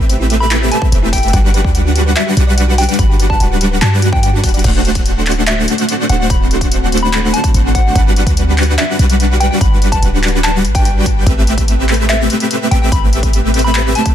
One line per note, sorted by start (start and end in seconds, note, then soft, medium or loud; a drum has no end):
0.00 0.70 A1 loud
0.00 0.69 A3 medium
0.00 0.69 C4 medium
0.00 0.69 G4 medium
0.00 0.69 B4 medium
0.00 0.69 E5 loud
0.09 0.16 C5 medium
0.09 closed hi-hat medium
0.20 0.27 E4 loud
0.30 0.34 G4 medium
0.30 closed hi-hat medium
0.40 0.47 A4 medium
0.40 0.69 B5 loud
0.51 0.58 E4 loud
0.51 clap loud
0.51 closed hi-hat medium
0.61 0.71 G4 medium
0.71 1.31 A3 medium
0.71 1.31 C4 medium
0.71 1.31 G4 medium
0.71 0.76 A4 medium
0.71 1.31 B4 medium
0.71 1.31 E5 loud
0.71 0.82 A5 loud
0.71 closed hi-hat medium
0.82 0.92 B4 loud
0.82 kick loud
0.92 1.32 E1 loud
0.92 0.99 C5 medium
0.92 closed hi-hat medium
1.03 1.09 E4 loud
1.13 1.38 G5 medium
1.13 kick medium
1.13 open hi-hat medium
1.18 closed hi-hat medium
1.23 1.30 A4 medium
1.23 closed hi-hat soft
1.28 closed hi-hat medium
1.33 1.63 G1 loud
1.33 2.34 G3 medium
1.33 2.34 D4 medium
1.33 2.34 F#4 medium
1.33 1.40 F#4 loud
1.33 2.34 B4 medium
1.33 2.34 F#5 loud
1.33 kick loud
1.33 closed hi-hat medium
1.44 1.54 G4 medium
1.54 1.58 B4 medium
1.54 closed hi-hat medium
1.64 2.15 D2 medium
1.64 1.74 D5 loud
1.64 kick medium
1.75 1.82 F#5 medium
1.75 closed hi-hat medium
1.85 1.92 F#4 loud
1.96 2.00 G4 medium
1.96 closed hi-hat medium
2.06 2.13 B4 medium
2.16 2.23 F#4 loud
2.16 2.27 E5 medium
2.16 clap loud
2.16 closed hi-hat medium
2.27 2.36 G4 medium
2.37 2.87 B1 medium
2.37 2.96 G3 loud
2.37 2.96 D4 medium
2.37 2.96 F#4 medium
2.37 2.96 B4 medium
2.37 2.41 B4 medium
2.37 2.97 F#5 loud
2.37 closed hi-hat medium
2.47 2.57 D5 loud
2.58 2.64 F#5 medium
2.58 closed hi-hat medium
2.68 2.75 F#4 loud
2.78 2.82 G4 medium
2.78 2.85 G5 medium
2.78 open hi-hat loud
2.83 closed hi-hat medium
2.89 2.96 B4 medium
2.89 2.95 G5 medium
2.89 closed hi-hat medium
2.94 closed hi-hat medium
2.99 3.39 G1 loud
2.99 3.06 F#4 loud
2.99 3.10 B5 medium
2.99 kick loud
2.99 closed hi-hat medium
3.09 3.19 G4 medium
3.20 3.24 B4 medium
3.20 closed hi-hat medium
3.30 3.40 D5 loud
3.30 3.41 A5 loud
3.30 kick medium
3.40 3.81 D1 loud
3.40 3.47 F#5 medium
3.40 closed hi-hat medium
3.50 3.57 F#4 loud
3.61 3.65 G4 medium
3.61 closed hi-hat medium
3.71 3.78 B4 medium
3.81 4.45 G2 medium
3.81 3.89 F#4 loud
3.81 3.92 A5 medium
3.81 clap loud
3.81 closed hi-hat medium
3.92 4.02 G4 medium
4.02 4.62 G3 medium
4.02 4.62 D4 medium
4.02 4.09 F#4 loud
4.02 4.62 F#4 medium
4.02 4.62 B4 medium
4.02 4.62 F#5 loud
4.02 closed hi-hat medium
4.12 4.19 G5 medium
4.12 kick loud
4.23 4.30 F#4 loud
4.23 4.30 G5 medium
4.23 closed hi-hat medium
4.33 4.40 F#4 loud
4.44 4.63 D1 medium
4.44 4.51 F#5 medium
4.44 kick medium
4.44 open hi-hat loud
4.49 closed hi-hat medium
4.54 4.61 D5 loud
4.54 closed hi-hat medium
4.59 closed hi-hat medium
4.64 5.67 D1 loud
4.64 7.92 D3 medium
4.64 5.66 A3 medium
4.64 7.92 C4 medium
4.64 5.65 D4 medium
4.64 7.92 F#4 loud
4.64 5.65 F#4 medium
4.64 5.66 C5 medium
4.64 5.66 F#5 loud
4.64 kick loud
4.64 closed hi-hat medium
4.64 crash loud
4.85 closed hi-hat medium
4.95 kick medium
4.95 closed hi-hat medium
5.06 closed hi-hat medium
5.26 clap medium
5.26 closed hi-hat medium
5.32 closed hi-hat medium
5.47 5.58 E5 medium
5.47 clap loud
5.47 closed hi-hat medium
5.68 6.28 A3 loud
5.68 6.28 D4 medium
5.68 6.28 F#4 medium
5.68 6.28 C5 medium
5.68 6.28 F#5 loud
5.68 closed hi-hat medium
5.78 closed hi-hat medium
5.89 closed hi-hat medium
6.09 6.28 D1 medium
6.09 6.16 F#5 medium
6.09 closed hi-hat medium
6.20 6.26 F#5 medium
6.30 7.32 D1 loud
6.30 6.41 B5 medium
6.30 kick loud
6.30 closed hi-hat medium
6.51 closed hi-hat medium
6.61 kick medium
6.61 closed hi-hat medium
6.72 closed hi-hat medium
6.92 closed hi-hat medium
6.97 closed hi-hat medium
7.03 7.31 B5 medium
7.13 clap loud
7.13 closed hi-hat medium
7.33 7.93 A3 medium
7.33 7.93 D4 medium
7.33 7.93 F#4 medium
7.33 7.93 C5 medium
7.33 7.93 F#5 loud
7.33 7.44 A5 loud
7.33 closed hi-hat medium
7.44 kick loud
7.44 closed hi-hat medium
7.54 7.94 A1 loud
7.54 closed hi-hat medium
7.75 8.00 F#5 loud
7.75 kick medium
7.75 closed hi-hat medium
7.95 8.25 G1 loud
7.95 8.97 G3 medium
7.95 8.97 D4 medium
7.95 8.97 F#4 medium
7.95 14.15 B4 medium
7.95 8.97 B4 medium
7.95 8.97 F#5 loud
7.95 kick loud
7.95 closed hi-hat medium
8.16 closed hi-hat medium
8.27 8.77 D2 medium
8.27 kick medium
8.27 closed hi-hat medium
8.37 closed hi-hat medium
8.58 clap medium
8.58 closed hi-hat medium
8.63 closed hi-hat medium
8.78 8.89 E5 medium
8.78 clap loud
8.78 closed hi-hat medium
8.99 9.50 B1 medium
8.99 9.59 G3 loud
8.99 9.59 D4 medium
8.99 9.59 F#4 medium
8.99 9.59 B4 medium
8.99 9.59 F#5 loud
8.99 closed hi-hat medium
9.10 closed hi-hat medium
9.20 closed hi-hat medium
9.40 9.47 G5 medium
9.40 closed hi-hat medium
9.51 9.57 G5 medium
9.61 10.01 G1 loud
9.61 9.72 B5 medium
9.61 kick loud
9.61 closed hi-hat medium
9.82 closed hi-hat medium
9.92 10.03 A5 medium
9.92 kick medium
9.92 closed hi-hat medium
10.03 10.66 D1 medium
10.03 closed hi-hat medium
10.23 clap medium
10.23 closed hi-hat soft
10.28 closed hi-hat medium
10.44 10.55 A5 medium
10.44 clap loud
10.44 closed hi-hat medium
10.65 11.25 A1 medium
10.65 closed hi-hat medium
10.75 11.24 G3 medium
10.75 11.24 D4 medium
10.75 11.24 F#4 medium
10.75 11.24 B4 medium
10.75 10.82 G5 medium
10.75 11.24 G5 loud
10.75 kick loud
10.75 closed hi-hat medium
10.85 10.92 G5 medium
10.85 closed hi-hat medium
11.06 kick medium
11.06 closed hi-hat medium
11.26 12.29 A1 loud
11.26 14.15 C3 medium
11.26 12.28 A3 medium
11.26 12.28 C4 medium
11.26 12.28 G4 medium
11.26 12.28 B4 medium
11.26 12.27 E5 medium
11.26 kick loud
11.26 closed hi-hat medium
11.47 closed hi-hat medium
11.58 kick medium
11.58 closed hi-hat medium
11.68 closed hi-hat medium
11.89 clap medium
11.89 closed hi-hat soft
11.94 closed hi-hat medium
12.09 12.20 E5 medium
12.09 clap loud
12.09 closed hi-hat medium
12.30 12.90 A3 medium
12.30 12.90 C4 medium
12.30 12.90 G4 medium
12.30 12.90 B4 medium
12.30 12.90 E5 loud
12.30 closed hi-hat medium
12.40 closed hi-hat medium
12.51 closed hi-hat medium
12.71 12.90 A1 medium
12.71 12.78 G5 medium
12.71 closed hi-hat medium
12.82 12.88 G5 medium
12.92 13.94 A1 loud
12.92 13.03 B5 medium
12.92 kick loud
12.92 closed hi-hat medium
13.13 closed hi-hat medium
13.23 kick medium
13.23 closed hi-hat medium
13.33 closed hi-hat medium
13.54 closed hi-hat medium
13.59 closed hi-hat medium
13.64 13.93 B5 medium
13.75 clap loud
13.75 closed hi-hat medium
13.95 14.15 A3 loud
13.95 14.15 C4 medium
13.95 14.15 G4 medium
13.95 14.15 B4 medium
13.95 14.15 E5 loud
13.95 14.06 A5 medium
13.95 closed hi-hat medium
14.06 kick loud
14.06 closed hi-hat medium